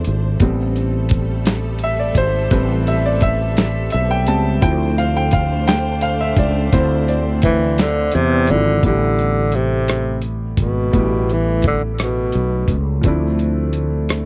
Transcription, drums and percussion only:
0.04 closed hi-hat
0.40 kick, closed hi-hat
0.76 closed hi-hat
1.09 kick, closed hi-hat
1.46 snare, closed hi-hat
1.79 closed hi-hat
2.15 kick, closed hi-hat
2.51 kick, closed hi-hat
2.87 closed hi-hat
3.21 kick, closed hi-hat
3.57 snare, closed hi-hat
3.90 closed hi-hat
4.27 closed hi-hat
4.62 kick, closed hi-hat
4.98 closed hi-hat
5.31 kick, closed hi-hat
5.67 snare, closed hi-hat
6.01 closed hi-hat
6.37 kick, closed hi-hat
6.73 kick, closed hi-hat
7.08 closed hi-hat
7.42 kick, closed hi-hat
7.78 snare, closed hi-hat
8.12 closed hi-hat
8.47 closed hi-hat
8.83 kick, closed hi-hat
9.19 closed hi-hat
9.52 closed hi-hat
9.88 cross-stick, closed hi-hat
10.22 closed hi-hat
10.57 kick, closed hi-hat
10.93 kick, closed hi-hat
11.30 closed hi-hat
11.62 kick, closed hi-hat
11.98 cross-stick, closed hi-hat
12.32 closed hi-hat
12.68 kick, closed hi-hat
13.03 kick, closed hi-hat
13.39 closed hi-hat
13.73 closed hi-hat
14.09 cross-stick, closed hi-hat

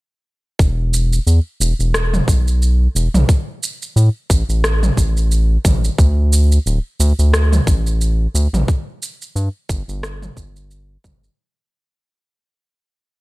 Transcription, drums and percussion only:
0.59 kick, shaker
0.94 shaker
1.13 shaker
1.27 shaker
1.61 shaker
1.80 shaker
1.94 cross-stick, shaker
2.14 mid tom, shaker
2.28 kick, shaker
2.48 shaker
2.62 shaker
2.96 shaker
3.14 mid tom, shaker
3.29 kick, shaker
3.63 shaker
3.82 shaker
3.97 shaker
4.30 kick, shaker
4.50 shaker
4.64 cross-stick, shaker
4.83 mid tom, shaker
4.97 kick, shaker
5.17 shaker
5.32 shaker
5.65 kick, mid tom, shaker
5.84 shaker
5.98 kick, shaker
6.33 shaker
6.52 shaker
6.67 shaker
7.00 shaker
7.19 shaker
7.34 cross-stick, shaker
7.53 mid tom, shaker
7.67 kick, shaker
7.87 shaker
8.01 shaker
8.35 shaker
8.54 mid tom, shaker
8.68 kick, shaker
9.03 shaker
9.22 shaker
9.36 shaker
9.69 kick, shaker
9.89 shaker
10.03 cross-stick, shaker
10.22 mid tom, shaker
10.37 kick, shaker
10.56 shaker
10.71 shaker
11.04 kick, mid tom, shaker
11.24 shaker

